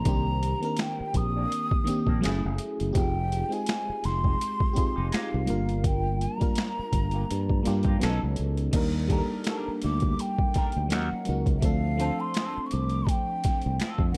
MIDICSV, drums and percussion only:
0, 0, Header, 1, 2, 480
1, 0, Start_track
1, 0, Tempo, 722892
1, 38, Time_signature, 4, 2, 24, 8
1, 9410, End_track
2, 0, Start_track
2, 0, Title_t, "Drums"
2, 35, Note_on_c, 9, 42, 67
2, 37, Note_on_c, 9, 36, 106
2, 101, Note_off_c, 9, 42, 0
2, 104, Note_off_c, 9, 36, 0
2, 284, Note_on_c, 9, 42, 59
2, 350, Note_off_c, 9, 42, 0
2, 416, Note_on_c, 9, 42, 33
2, 482, Note_off_c, 9, 42, 0
2, 508, Note_on_c, 9, 42, 75
2, 525, Note_on_c, 9, 38, 115
2, 527, Note_on_c, 9, 26, 90
2, 575, Note_off_c, 9, 42, 0
2, 591, Note_off_c, 9, 38, 0
2, 594, Note_off_c, 9, 26, 0
2, 758, Note_on_c, 9, 36, 78
2, 758, Note_on_c, 9, 42, 67
2, 824, Note_off_c, 9, 42, 0
2, 825, Note_off_c, 9, 36, 0
2, 1009, Note_on_c, 9, 42, 78
2, 1075, Note_off_c, 9, 42, 0
2, 1138, Note_on_c, 9, 36, 102
2, 1204, Note_off_c, 9, 36, 0
2, 1243, Note_on_c, 9, 42, 65
2, 1309, Note_off_c, 9, 42, 0
2, 1372, Note_on_c, 9, 36, 100
2, 1438, Note_off_c, 9, 36, 0
2, 1484, Note_on_c, 9, 42, 76
2, 1496, Note_on_c, 9, 38, 109
2, 1498, Note_on_c, 9, 26, 81
2, 1551, Note_off_c, 9, 42, 0
2, 1563, Note_off_c, 9, 38, 0
2, 1565, Note_off_c, 9, 26, 0
2, 1716, Note_on_c, 9, 42, 62
2, 1782, Note_off_c, 9, 42, 0
2, 1859, Note_on_c, 9, 42, 35
2, 1925, Note_off_c, 9, 42, 0
2, 1959, Note_on_c, 9, 36, 107
2, 1959, Note_on_c, 9, 42, 75
2, 2025, Note_off_c, 9, 42, 0
2, 2026, Note_off_c, 9, 36, 0
2, 2206, Note_on_c, 9, 42, 54
2, 2272, Note_off_c, 9, 42, 0
2, 2339, Note_on_c, 9, 42, 31
2, 2405, Note_off_c, 9, 42, 0
2, 2433, Note_on_c, 9, 42, 75
2, 2450, Note_on_c, 9, 38, 110
2, 2452, Note_on_c, 9, 26, 91
2, 2500, Note_off_c, 9, 42, 0
2, 2516, Note_off_c, 9, 38, 0
2, 2519, Note_off_c, 9, 26, 0
2, 2681, Note_on_c, 9, 42, 60
2, 2697, Note_on_c, 9, 38, 31
2, 2748, Note_off_c, 9, 42, 0
2, 2764, Note_off_c, 9, 38, 0
2, 2817, Note_on_c, 9, 36, 81
2, 2883, Note_off_c, 9, 36, 0
2, 2930, Note_on_c, 9, 42, 75
2, 2997, Note_off_c, 9, 42, 0
2, 3057, Note_on_c, 9, 36, 93
2, 3123, Note_off_c, 9, 36, 0
2, 3163, Note_on_c, 9, 42, 66
2, 3170, Note_on_c, 9, 36, 84
2, 3229, Note_off_c, 9, 42, 0
2, 3237, Note_off_c, 9, 36, 0
2, 3402, Note_on_c, 9, 42, 75
2, 3414, Note_on_c, 9, 38, 106
2, 3417, Note_on_c, 9, 26, 75
2, 3469, Note_off_c, 9, 42, 0
2, 3481, Note_off_c, 9, 38, 0
2, 3483, Note_off_c, 9, 26, 0
2, 3634, Note_on_c, 9, 42, 58
2, 3701, Note_off_c, 9, 42, 0
2, 3777, Note_on_c, 9, 42, 32
2, 3843, Note_off_c, 9, 42, 0
2, 3878, Note_on_c, 9, 36, 94
2, 3879, Note_on_c, 9, 42, 75
2, 3944, Note_off_c, 9, 36, 0
2, 3945, Note_off_c, 9, 42, 0
2, 4125, Note_on_c, 9, 42, 52
2, 4191, Note_off_c, 9, 42, 0
2, 4256, Note_on_c, 9, 42, 33
2, 4259, Note_on_c, 9, 36, 87
2, 4323, Note_off_c, 9, 42, 0
2, 4326, Note_off_c, 9, 36, 0
2, 4352, Note_on_c, 9, 42, 76
2, 4369, Note_on_c, 9, 38, 118
2, 4371, Note_on_c, 9, 26, 81
2, 4419, Note_off_c, 9, 42, 0
2, 4435, Note_off_c, 9, 38, 0
2, 4438, Note_off_c, 9, 26, 0
2, 4598, Note_on_c, 9, 36, 76
2, 4600, Note_on_c, 9, 42, 70
2, 4665, Note_off_c, 9, 36, 0
2, 4666, Note_off_c, 9, 42, 0
2, 4723, Note_on_c, 9, 42, 34
2, 4789, Note_off_c, 9, 42, 0
2, 4851, Note_on_c, 9, 42, 77
2, 4917, Note_off_c, 9, 42, 0
2, 4977, Note_on_c, 9, 36, 87
2, 5043, Note_off_c, 9, 36, 0
2, 5083, Note_on_c, 9, 42, 71
2, 5093, Note_on_c, 9, 38, 38
2, 5149, Note_off_c, 9, 42, 0
2, 5160, Note_off_c, 9, 38, 0
2, 5199, Note_on_c, 9, 42, 33
2, 5210, Note_on_c, 9, 36, 105
2, 5265, Note_off_c, 9, 42, 0
2, 5276, Note_off_c, 9, 36, 0
2, 5321, Note_on_c, 9, 42, 67
2, 5333, Note_on_c, 9, 38, 98
2, 5336, Note_on_c, 9, 26, 78
2, 5388, Note_off_c, 9, 42, 0
2, 5400, Note_off_c, 9, 38, 0
2, 5402, Note_off_c, 9, 26, 0
2, 5552, Note_on_c, 9, 42, 55
2, 5619, Note_off_c, 9, 42, 0
2, 5693, Note_on_c, 9, 42, 33
2, 5760, Note_off_c, 9, 42, 0
2, 5796, Note_on_c, 9, 42, 77
2, 5796, Note_on_c, 9, 49, 86
2, 5797, Note_on_c, 9, 36, 104
2, 5862, Note_off_c, 9, 42, 0
2, 5862, Note_off_c, 9, 49, 0
2, 5864, Note_off_c, 9, 36, 0
2, 6039, Note_on_c, 9, 36, 83
2, 6041, Note_on_c, 9, 42, 57
2, 6106, Note_off_c, 9, 36, 0
2, 6107, Note_off_c, 9, 42, 0
2, 6270, Note_on_c, 9, 42, 72
2, 6286, Note_on_c, 9, 38, 100
2, 6288, Note_on_c, 9, 26, 87
2, 6336, Note_off_c, 9, 42, 0
2, 6352, Note_off_c, 9, 38, 0
2, 6355, Note_off_c, 9, 26, 0
2, 6518, Note_on_c, 9, 42, 62
2, 6533, Note_on_c, 9, 38, 33
2, 6584, Note_off_c, 9, 42, 0
2, 6600, Note_off_c, 9, 38, 0
2, 6640, Note_on_c, 9, 42, 34
2, 6656, Note_on_c, 9, 36, 81
2, 6707, Note_off_c, 9, 42, 0
2, 6722, Note_off_c, 9, 36, 0
2, 6767, Note_on_c, 9, 42, 78
2, 6834, Note_off_c, 9, 42, 0
2, 6896, Note_on_c, 9, 36, 96
2, 6962, Note_off_c, 9, 36, 0
2, 7000, Note_on_c, 9, 42, 66
2, 7010, Note_on_c, 9, 36, 90
2, 7011, Note_on_c, 9, 38, 37
2, 7066, Note_off_c, 9, 42, 0
2, 7076, Note_off_c, 9, 36, 0
2, 7077, Note_off_c, 9, 38, 0
2, 7119, Note_on_c, 9, 42, 34
2, 7185, Note_off_c, 9, 42, 0
2, 7239, Note_on_c, 9, 42, 73
2, 7251, Note_on_c, 9, 38, 94
2, 7253, Note_on_c, 9, 26, 77
2, 7306, Note_off_c, 9, 42, 0
2, 7318, Note_off_c, 9, 38, 0
2, 7320, Note_off_c, 9, 26, 0
2, 7471, Note_on_c, 9, 42, 58
2, 7538, Note_off_c, 9, 42, 0
2, 7611, Note_on_c, 9, 36, 77
2, 7614, Note_on_c, 9, 42, 32
2, 7677, Note_off_c, 9, 36, 0
2, 7680, Note_off_c, 9, 42, 0
2, 7718, Note_on_c, 9, 36, 104
2, 7718, Note_on_c, 9, 42, 77
2, 7784, Note_off_c, 9, 36, 0
2, 7785, Note_off_c, 9, 42, 0
2, 7965, Note_on_c, 9, 42, 59
2, 8032, Note_off_c, 9, 42, 0
2, 8195, Note_on_c, 9, 42, 73
2, 8212, Note_on_c, 9, 38, 113
2, 8214, Note_on_c, 9, 26, 92
2, 8261, Note_off_c, 9, 42, 0
2, 8278, Note_off_c, 9, 38, 0
2, 8280, Note_off_c, 9, 26, 0
2, 8438, Note_on_c, 9, 42, 59
2, 8505, Note_off_c, 9, 42, 0
2, 8562, Note_on_c, 9, 42, 32
2, 8629, Note_off_c, 9, 42, 0
2, 8676, Note_on_c, 9, 36, 89
2, 8689, Note_on_c, 9, 42, 75
2, 8743, Note_off_c, 9, 36, 0
2, 8755, Note_off_c, 9, 42, 0
2, 8922, Note_on_c, 9, 42, 69
2, 8929, Note_on_c, 9, 36, 89
2, 8933, Note_on_c, 9, 38, 33
2, 8988, Note_off_c, 9, 42, 0
2, 8996, Note_off_c, 9, 36, 0
2, 8999, Note_off_c, 9, 38, 0
2, 9041, Note_on_c, 9, 42, 32
2, 9107, Note_off_c, 9, 42, 0
2, 9161, Note_on_c, 9, 42, 75
2, 9172, Note_on_c, 9, 38, 109
2, 9175, Note_on_c, 9, 26, 81
2, 9227, Note_off_c, 9, 42, 0
2, 9239, Note_off_c, 9, 38, 0
2, 9241, Note_off_c, 9, 26, 0
2, 9286, Note_on_c, 9, 36, 100
2, 9352, Note_off_c, 9, 36, 0
2, 9410, End_track
0, 0, End_of_file